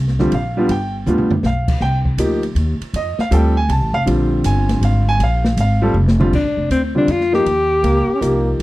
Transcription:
Already playing: upright bass C2
0.08 snare
0.19 grand piano D3 G3 C4 F4, snare
0.32 upright bass A#1, grand piano F5, kick, ride
0.57 grand piano G3 B3 D4 F4
0.69 upright bass G1, grand piano G5, kick, ride
1.06 upright bass D2, grand piano G3 B3 D4 F4, hi-hat pedal, mid tom
1.18 mid tom
1.31 floor tom
1.43 upright bass B1, grand piano F5, snare
1.68 kick, crash
1.80 upright bass C2, grand piano G5, snare
2.05 kick
2.18 upright bass D2, grand piano F3 A#3 D#4 G4, kick, hi-hat pedal, ride
2.43 ride
2.55 upright bass D#2, kick, ride
2.80 muted upright bass stroke, ride
2.94 upright bass F2, grand piano D#5, kick, ride
3.18 grand piano F5, muted upright bass stroke, snare
3.31 upright bass D2, grand piano G3 C4 F4 A4 G5, kick, hi-hat pedal, ride
3.57 grand piano G#5
3.69 upright bass C2, grand piano A5, kick, ride
3.81 upright bass A1
3.93 upright bass F1, grand piano F5
4.06 upright bass A#1, grand piano D3 G3 C4 F4, kick, ride
4.44 upright bass G1, grand piano G#5, kick, hi-hat pedal, ride
4.69 snare, ride
4.81 upright bass G#1, grand piano F5, kick, ride
5.09 grand piano G#5
5.19 upright bass A#1, kick, ride
5.24 grand piano F5
5.44 snare
5.57 upright bass G#1, grand piano F5, kick, hi-hat pedal, ride
5.82 grand piano G3 C4 F4 A4
5.94 upright bass F1
6.08 snare
6.20 grand piano D3 G3 C4 F4, mid tom
6.32 upright bass A#1, alto saxophone D4, kick, crash
6.44 upright bass G#1
6.57 upright bass F1
6.70 upright bass D2, alto saxophone C4, kick, hi-hat pedal, ride
6.95 grand piano D3 G3 C4 F4, alto saxophone D4
7.08 upright bass F2, alto saxophone F4, kick, ride
7.21 snare
7.32 grand piano F3 A#3 D#4 G4, alto saxophone G4, snare
7.46 upright bass D#2, kick, ride
7.83 upright bass C#2, trombone A#3, kick, ride
8.14 trombone C#4
8.20 upright bass C2, grand piano F3 A#3 D#4 G4, trombone A#3, kick, hi-hat pedal, ride
8.59 upright bass A#1, kick

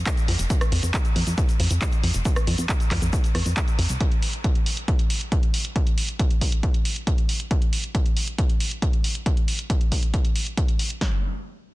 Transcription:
0.06 kick, clap, closed hi-hat, shaker
0.17 closed hi-hat, shaker
0.28 analog synth bass F2, open hi-hat
0.39 analog synth bass F1, closed hi-hat, shaker
0.50 kick, closed hi-hat, shaker
0.61 cross-stick, closed hi-hat, shaker
0.72 analog synth bass F2, open hi-hat
0.83 analog synth bass F2, closed hi-hat, shaker
0.94 kick, clap, closed hi-hat, shaker
1.05 closed hi-hat, shaker
1.16 analog synth bass F2, open hi-hat
1.27 analog synth bass F2, closed hi-hat, shaker
1.38 kick, closed hi-hat, shaker
1.49 closed hi-hat, shaker
1.60 analog synth bass F2, open hi-hat
1.71 analog synth bass F2, closed hi-hat, shaker
1.82 kick, clap, closed hi-hat, shaker
1.92 closed hi-hat, shaker
2.03 analog synth bass F2, open hi-hat
2.14 analog synth bass F1, closed hi-hat, shaker
2.25 kick, closed hi-hat, shaker
2.36 cross-stick, closed hi-hat, shaker
2.47 analog synth bass F2, open hi-hat
2.58 analog synth bass F2, closed hi-hat, shaker
2.69 kick, clap, closed hi-hat, shaker
2.80 closed hi-hat, shaker
2.91 analog synth bass F2, kick, clap, open hi-hat
3.02 analog synth bass F2, closed hi-hat, shaker
3.13 kick, closed hi-hat, shaker
3.24 closed hi-hat, shaker
3.35 analog synth bass F2, cross-stick, open hi-hat
3.46 analog synth bass F2, closed hi-hat, shaker
3.57 kick, clap, closed hi-hat, shaker
3.68 closed hi-hat, shaker
3.79 analog synth bass F2, open hi-hat
3.89 analog synth bass C2, closed hi-hat, shaker
4.01 kick, closed hi-hat
4.12 closed hi-hat
4.22 open hi-hat
4.33 closed hi-hat
4.44 kick, closed hi-hat
4.55 closed hi-hat
4.66 open hi-hat
4.77 closed hi-hat
4.88 kick, closed hi-hat
4.99 closed hi-hat
5.10 open hi-hat
5.21 closed hi-hat
5.32 kick, closed hi-hat
5.43 closed hi-hat
5.54 open hi-hat
5.65 closed hi-hat
5.76 kick, closed hi-hat
5.87 closed hi-hat
5.98 open hi-hat
6.09 closed hi-hat
6.19 kick, closed hi-hat
6.30 closed hi-hat
6.41 kick, open hi-hat
6.52 closed hi-hat
6.63 kick, closed hi-hat
6.74 closed hi-hat
6.85 open hi-hat
6.96 closed hi-hat
7.07 kick, closed hi-hat
7.18 closed hi-hat
7.29 open hi-hat
7.40 closed hi-hat
7.51 kick, closed hi-hat
7.62 closed hi-hat
7.73 open hi-hat
7.84 closed hi-hat
7.95 kick, closed hi-hat
8.06 closed hi-hat
8.17 open hi-hat
8.28 closed hi-hat
8.38 kick, closed hi-hat
8.49 closed hi-hat
8.60 open hi-hat
8.71 closed hi-hat
8.82 kick, closed hi-hat
8.93 closed hi-hat
9.04 open hi-hat
9.15 closed hi-hat
9.26 kick, closed hi-hat
9.37 closed hi-hat
9.48 open hi-hat
9.59 closed hi-hat
9.70 kick, closed hi-hat
9.81 closed hi-hat
9.92 kick, open hi-hat
10.03 closed hi-hat
10.14 kick, closed hi-hat
10.25 closed hi-hat
10.36 open hi-hat
10.46 closed hi-hat
10.57 kick, closed hi-hat
10.68 closed hi-hat
10.79 open hi-hat
10.90 closed hi-hat
11.01 kick, snare

